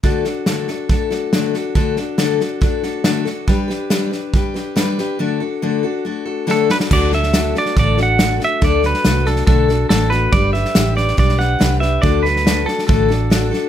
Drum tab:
CC |----------------|----------------|----------------|----------------|
HH |----p-------p---|----p-------p---|----p-------p---|----------------|
SD |o-o-o-o-o-o-o-o-|o-o-o-o-o-o-o-o-|o-o-o-o-o-o-o-o-|------------o-oo|
BD |o-------o-------|o-------o-------|o-------o-------|----------------|

CC |x---------------|----------------|----------------|----------------|
HH |----p-------p---|----p-------p---|----p-------p---|----p-------p---|
SD |o-ooo-ooo-o-o-o-|o-ooo-ooo-o-o-o-|o-ooo-ooooo-o-o-|o-ooo-ooo-o-o-o-|
BD |o-------o-------|o-------o-------|o-------o-------|o-------o-------|